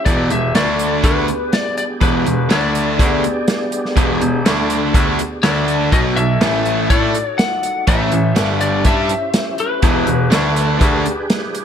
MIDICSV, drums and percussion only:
0, 0, Header, 1, 2, 480
1, 0, Start_track
1, 0, Tempo, 488599
1, 59, Time_signature, 4, 2, 24, 8
1, 11443, End_track
2, 0, Start_track
2, 0, Title_t, "Drums"
2, 59, Note_on_c, 9, 42, 89
2, 60, Note_on_c, 9, 36, 110
2, 157, Note_off_c, 9, 42, 0
2, 158, Note_off_c, 9, 36, 0
2, 299, Note_on_c, 9, 42, 58
2, 397, Note_off_c, 9, 42, 0
2, 540, Note_on_c, 9, 42, 85
2, 544, Note_on_c, 9, 38, 103
2, 638, Note_off_c, 9, 42, 0
2, 642, Note_off_c, 9, 38, 0
2, 780, Note_on_c, 9, 42, 65
2, 878, Note_off_c, 9, 42, 0
2, 1018, Note_on_c, 9, 42, 81
2, 1020, Note_on_c, 9, 36, 97
2, 1116, Note_off_c, 9, 42, 0
2, 1118, Note_off_c, 9, 36, 0
2, 1259, Note_on_c, 9, 42, 55
2, 1357, Note_off_c, 9, 42, 0
2, 1500, Note_on_c, 9, 42, 72
2, 1504, Note_on_c, 9, 38, 105
2, 1599, Note_off_c, 9, 42, 0
2, 1602, Note_off_c, 9, 38, 0
2, 1743, Note_on_c, 9, 42, 55
2, 1842, Note_off_c, 9, 42, 0
2, 1977, Note_on_c, 9, 42, 76
2, 1979, Note_on_c, 9, 36, 101
2, 2075, Note_off_c, 9, 42, 0
2, 2077, Note_off_c, 9, 36, 0
2, 2224, Note_on_c, 9, 42, 51
2, 2322, Note_off_c, 9, 42, 0
2, 2460, Note_on_c, 9, 42, 75
2, 2464, Note_on_c, 9, 38, 107
2, 2558, Note_off_c, 9, 42, 0
2, 2562, Note_off_c, 9, 38, 0
2, 2702, Note_on_c, 9, 42, 60
2, 2801, Note_off_c, 9, 42, 0
2, 2941, Note_on_c, 9, 36, 101
2, 2944, Note_on_c, 9, 42, 82
2, 3040, Note_off_c, 9, 36, 0
2, 3042, Note_off_c, 9, 42, 0
2, 3183, Note_on_c, 9, 42, 55
2, 3281, Note_off_c, 9, 42, 0
2, 3416, Note_on_c, 9, 42, 78
2, 3419, Note_on_c, 9, 38, 104
2, 3514, Note_off_c, 9, 42, 0
2, 3518, Note_off_c, 9, 38, 0
2, 3655, Note_on_c, 9, 42, 62
2, 3754, Note_off_c, 9, 42, 0
2, 3785, Note_on_c, 9, 38, 30
2, 3883, Note_off_c, 9, 38, 0
2, 3896, Note_on_c, 9, 36, 105
2, 3897, Note_on_c, 9, 42, 86
2, 3995, Note_off_c, 9, 36, 0
2, 3996, Note_off_c, 9, 42, 0
2, 4140, Note_on_c, 9, 42, 51
2, 4238, Note_off_c, 9, 42, 0
2, 4379, Note_on_c, 9, 42, 92
2, 4383, Note_on_c, 9, 38, 101
2, 4477, Note_off_c, 9, 42, 0
2, 4481, Note_off_c, 9, 38, 0
2, 4616, Note_on_c, 9, 42, 63
2, 4715, Note_off_c, 9, 42, 0
2, 4857, Note_on_c, 9, 36, 106
2, 4861, Note_on_c, 9, 42, 85
2, 4955, Note_off_c, 9, 36, 0
2, 4959, Note_off_c, 9, 42, 0
2, 5098, Note_on_c, 9, 42, 56
2, 5196, Note_off_c, 9, 42, 0
2, 5338, Note_on_c, 9, 42, 79
2, 5342, Note_on_c, 9, 38, 103
2, 5436, Note_off_c, 9, 42, 0
2, 5440, Note_off_c, 9, 38, 0
2, 5580, Note_on_c, 9, 42, 54
2, 5678, Note_off_c, 9, 42, 0
2, 5820, Note_on_c, 9, 36, 106
2, 5821, Note_on_c, 9, 42, 79
2, 5918, Note_off_c, 9, 36, 0
2, 5919, Note_off_c, 9, 42, 0
2, 6062, Note_on_c, 9, 42, 50
2, 6160, Note_off_c, 9, 42, 0
2, 6298, Note_on_c, 9, 42, 77
2, 6302, Note_on_c, 9, 38, 104
2, 6397, Note_off_c, 9, 42, 0
2, 6400, Note_off_c, 9, 38, 0
2, 6539, Note_on_c, 9, 42, 52
2, 6637, Note_off_c, 9, 42, 0
2, 6780, Note_on_c, 9, 42, 78
2, 6781, Note_on_c, 9, 36, 97
2, 6878, Note_off_c, 9, 42, 0
2, 6879, Note_off_c, 9, 36, 0
2, 7020, Note_on_c, 9, 42, 56
2, 7118, Note_off_c, 9, 42, 0
2, 7259, Note_on_c, 9, 42, 71
2, 7263, Note_on_c, 9, 38, 111
2, 7358, Note_off_c, 9, 42, 0
2, 7362, Note_off_c, 9, 38, 0
2, 7497, Note_on_c, 9, 42, 58
2, 7595, Note_off_c, 9, 42, 0
2, 7735, Note_on_c, 9, 42, 82
2, 7737, Note_on_c, 9, 36, 96
2, 7833, Note_off_c, 9, 42, 0
2, 7836, Note_off_c, 9, 36, 0
2, 7974, Note_on_c, 9, 42, 50
2, 8072, Note_off_c, 9, 42, 0
2, 8214, Note_on_c, 9, 42, 88
2, 8218, Note_on_c, 9, 38, 112
2, 8312, Note_off_c, 9, 42, 0
2, 8316, Note_off_c, 9, 38, 0
2, 8455, Note_on_c, 9, 42, 65
2, 8553, Note_off_c, 9, 42, 0
2, 8690, Note_on_c, 9, 42, 84
2, 8695, Note_on_c, 9, 36, 98
2, 8789, Note_off_c, 9, 42, 0
2, 8793, Note_off_c, 9, 36, 0
2, 8934, Note_on_c, 9, 42, 64
2, 9032, Note_off_c, 9, 42, 0
2, 9172, Note_on_c, 9, 42, 83
2, 9176, Note_on_c, 9, 38, 100
2, 9270, Note_off_c, 9, 42, 0
2, 9274, Note_off_c, 9, 38, 0
2, 9413, Note_on_c, 9, 42, 59
2, 9512, Note_off_c, 9, 42, 0
2, 9652, Note_on_c, 9, 42, 80
2, 9656, Note_on_c, 9, 36, 99
2, 9750, Note_off_c, 9, 42, 0
2, 9754, Note_off_c, 9, 36, 0
2, 9892, Note_on_c, 9, 42, 53
2, 9990, Note_off_c, 9, 42, 0
2, 10136, Note_on_c, 9, 42, 82
2, 10139, Note_on_c, 9, 38, 101
2, 10234, Note_off_c, 9, 42, 0
2, 10238, Note_off_c, 9, 38, 0
2, 10379, Note_on_c, 9, 42, 57
2, 10477, Note_off_c, 9, 42, 0
2, 10619, Note_on_c, 9, 36, 108
2, 10620, Note_on_c, 9, 42, 76
2, 10718, Note_off_c, 9, 36, 0
2, 10718, Note_off_c, 9, 42, 0
2, 10862, Note_on_c, 9, 42, 58
2, 10960, Note_off_c, 9, 42, 0
2, 11099, Note_on_c, 9, 42, 79
2, 11103, Note_on_c, 9, 38, 105
2, 11197, Note_off_c, 9, 42, 0
2, 11201, Note_off_c, 9, 38, 0
2, 11343, Note_on_c, 9, 42, 56
2, 11441, Note_off_c, 9, 42, 0
2, 11443, End_track
0, 0, End_of_file